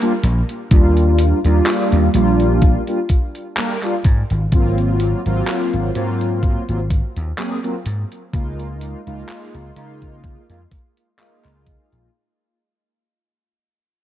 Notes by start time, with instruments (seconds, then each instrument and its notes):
0.01 analog polysynth G3 A#3 D4 F4, closed hi-hat
0.23 slap bass A#1, closed hi-hat
0.49 closed hi-hat
0.71 slap bass D#2, analog polysynth G3 A#3 D4 F4, kick, closed hi-hat
0.97 closed hi-hat
1.19 closed hi-hat
1.44 slap bass D#2, analog polysynth G3 A#3 D4 F4, closed hi-hat
1.66 clap, closed hi-hat
1.92 slap bass D#2, closed hi-hat
2.13 slap bass A#1, analog polysynth G3 A#3 D4 F4, closed hi-hat
2.40 closed hi-hat
2.62 kick, closed hi-hat
2.87 analog polysynth G3 A#3 D4 F4, closed hi-hat
3.09 kick, closed hi-hat
3.35 closed hi-hat
3.56 analog polysynth G3 A#3 D4 A#4, clap, closed hi-hat
3.82 analog polysynth G3 A#3 D4 F4, clap, closed hi-hat
4.04 slap bass G#2, kick, closed hi-hat
4.30 slap bass G#1, closed hi-hat
4.52 slap bass G#1, analog polysynth F#3 A#3 C4 F4, kick, closed hi-hat
4.78 closed hi-hat
5.00 closed hi-hat
5.25 slap bass G#1, analog polysynth F#3 A#3 C4 F4, closed hi-hat
5.48 clap, closed hi-hat
5.73 slap bass G#1, closed hi-hat
5.94 slap bass G#2, analog polysynth F#3 A#3 C4 F4, closed hi-hat
6.21 closed hi-hat
6.43 kick, closed hi-hat
6.68 slap bass G#1, analog polysynth F#3 A#3 C4 F4, closed hi-hat
6.91 kick, closed hi-hat
7.16 slap bass D#2, closed hi-hat
7.37 analog polysynth F#3 A#3 C4 G#4, clap, closed hi-hat
7.63 analog polysynth F#3 A#3 C4 F4, closed hi-hat
7.86 slap bass G#2, closed hi-hat
8.12 closed hi-hat
8.32 slap bass C#2, analog polysynth G#3 A#3 D#4 F4, kick, closed hi-hat
8.59 closed hi-hat
8.81 closed hi-hat
9.05 slap bass C#2, analog polysynth G#3 A#3 D#4 F4, closed hi-hat
9.29 clap, closed hi-hat
9.54 slap bass C#2, closed hi-hat
9.75 slap bass C#3, analog polysynth G#3 A#3 D#4 F4, closed hi-hat
10.02 kick, closed hi-hat
10.24 kick, closed hi-hat
10.49 slap bass F2, analog polysynth G#3 A#3 D#4 F4, closed hi-hat
10.72 kick, closed hi-hat
10.97 closed hi-hat
11.18 analog polysynth G#3 A#3 D#4 F4, clap, closed hi-hat
11.45 slap bass C#2, clap, closed hi-hat
11.67 kick, closed hi-hat
11.92 slap bass A#1, closed hi-hat